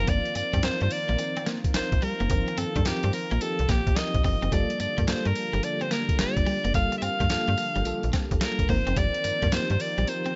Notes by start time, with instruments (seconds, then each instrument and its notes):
Already playing: analog synth pad D#3 F3 A#3 C4 F4, fm electric piano F3 C4 D#4 A#4, alto saxophone A#4
0.07 fm bass G1, clean electric guitar A#3, alto saxophone D5, kick, closed hi-hat, tambourine
0.25 closed hi-hat
0.35 fm bass G2, alto saxophone D5, muted clean electric guitar stroke, closed hi-hat, tambourine
0.53 fm bass G2, clean electric guitar C4, kick, closed hi-hat
0.63 fm electric piano F3 C4 D#4 A#4, clean electric guitar C4, alto saxophone C5, snare, clap, closed hi-hat, tambourine
0.81 fm bass G2, alto saxophone C5, muted clean electric guitar stroke, closed hi-hat
0.90 alto saxophone D5, open hi-hat, tambourine
1.09 fm bass A#1, clean electric guitar A#3, closed hi-hat
1.18 fm electric piano F3 C4 D#4 A#4, muted clean electric guitar stroke, closed hi-hat, tambourine
1.36 clean electric guitar C4, closed hi-hat
1.46 clean electric guitar A#3, snare, closed hi-hat, tambourine
1.64 kick, closed hi-hat
1.74 fm bass A#1, fm electric piano F3 C4 D#4 A#4, alto saxophone C5, muted clean electric guitar stroke, snare, clap, closed hi-hat, tambourine
1.92 fm bass A#1, kick, closed hi-hat
2.02 clean electric guitar G3, alto saxophone A#4, open hi-hat
2.20 fm bass F#1, clean electric guitar A#3, closed hi-hat
2.30 fm bass G1, fm electric piano F3 C4 D#4 A#4, kick, closed hi-hat, tambourine
2.48 muted clean electric guitar stroke, closed hi-hat
2.57 fm bass G2, clean electric guitar C4, alto saxophone A4, closed hi-hat, tambourine
2.76 fm bass G2, clean electric guitar D4, kick, closed hi-hat
2.85 fm electric piano F3 C4 D#4 A#4, alto saxophone G4, snare, clap, closed hi-hat, tambourine
3.03 fm bass G2, clean electric guitar C4, closed hi-hat
3.13 alto saxophone A#4, muted clean electric guitar stroke, open hi-hat, tambourine
3.31 fm bass A#1, clean electric guitar A#3, closed hi-hat
3.41 fm electric piano F3 C4 D#4 G4, alto saxophone A4, closed hi-hat, tambourine
3.59 fm bass C2, closed hi-hat
3.69 fm bass A#1, clean electric guitar A#3, alto saxophone G4, kick, snare, closed hi-hat, tambourine
3.87 fm bass A#1, kick, closed hi-hat
3.96 fm electric piano F3 C4 D#4 A#4, alto saxophone D#5, muted clean electric guitar stroke, snare, clap, closed hi-hat, tambourine
4.14 fm bass A#1, kick, closed hi-hat
4.24 fm bass G1, clean electric guitar C4, alto saxophone D#5, kick, open hi-hat
4.42 fm bass F#1, clean electric guitar C4, closed hi-hat
4.52 fm bass G1, analog synth pad D3 F3 G3 A#3, fm electric piano G3 A#3 F4 A4, clean electric guitar G3, alto saxophone D5, kick, closed hi-hat, tambourine
4.70 closed hi-hat
4.80 fm bass G2, alto saxophone D5, muted clean electric guitar stroke, closed hi-hat, tambourine
4.98 fm bass G2, clean electric guitar A#3, kick, closed hi-hat
5.06 fm electric piano G3 A#3 F4 A4, clean electric guitar A#3, alto saxophone C5 D5, snare, clap, closed hi-hat, tambourine
5.25 fm bass G2, alto saxophone A#4, muted clean electric guitar stroke, closed hi-hat
5.35 open hi-hat, tambourine
5.53 fm bass G1, clean electric guitar G3, closed hi-hat
5.63 fm electric piano G3 A#3 F4 A4, alto saxophone D5, muted clean electric guitar stroke, closed hi-hat, tambourine
5.81 clean electric guitar C4, alto saxophone C5, closed hi-hat
5.91 clean electric guitar A#3, alto saxophone A#4, snare, closed hi-hat, tambourine
6.09 kick, closed hi-hat
6.19 fm bass G1, fm electric piano G3 A#3 F4 G4, alto saxophone D5, muted clean electric guitar stroke, snare, clap, closed hi-hat, tambourine
6.37 fm bass G1, kick, closed hi-hat
6.46 clean electric guitar G3, open hi-hat
6.64 fm bass F#1, clean electric guitar A#3, closed hi-hat
6.74 fm bass G1, fm electric piano G3 A#3 F4 A4, alto saxophone F5, kick, closed hi-hat, tambourine
6.92 muted clean electric guitar stroke, closed hi-hat
6.98 alto saxophone E5, closed hi-hat, tambourine
7.02 fm bass G2, clean electric guitar C4, alto saxophone F5
7.20 fm bass G2, clean electric guitar A#3, kick, closed hi-hat
7.29 fm electric piano G3 A#3 F4 A4, snare, clap, closed hi-hat, tambourine
7.47 fm bass G2, clean electric guitar A#3, closed hi-hat
7.57 muted clean electric guitar stroke, open hi-hat, tambourine
7.75 fm bass G1, clean electric guitar G3, closed hi-hat
7.85 fm bass A#1, fm electric piano G3 A#3 F4 A4, closed hi-hat, tambourine
8.03 fm bass A#1, closed hi-hat
8.13 clean electric guitar C4, kick, snare, closed hi-hat, tambourine
8.31 fm bass G1, kick, closed hi-hat
8.41 fm electric piano G3 A#3 F4 A#4, alto saxophone A#4, muted clean electric guitar stroke, snare, clap, closed hi-hat, tambourine
8.59 fm bass G1, kick, closed hi-hat
8.69 fm bass G1, analog synth pad D#3 F3 C4, fm electric piano F3 C4 D#4 A#4, clean electric guitar A#3, alto saxophone C5, kick, open hi-hat
8.87 fm bass F#1, clean electric guitar C4, closed hi-hat
8.96 fm bass G1, clean electric guitar G3, alto saxophone D5, kick, closed hi-hat, tambourine
9.14 closed hi-hat
9.24 fm bass G2, muted clean electric guitar stroke, closed hi-hat, tambourine
9.42 fm bass G2, clean electric guitar A#3, kick, closed hi-hat
9.52 fm electric piano F3 C4 D#4 G4, clean electric guitar A#3, alto saxophone C5, snare, clap, closed hi-hat, tambourine
9.70 fm bass G2, alto saxophone C5, muted clean electric guitar stroke, closed hi-hat
9.80 alto saxophone D5, open hi-hat, tambourine
9.98 fm bass A#1, clean electric guitar G3, closed hi-hat
10.07 fm electric piano F3 C4 D#4 A#4, alto saxophone C5, muted clean electric guitar stroke, closed hi-hat, tambourine
10.26 clean electric guitar C4, closed hi-hat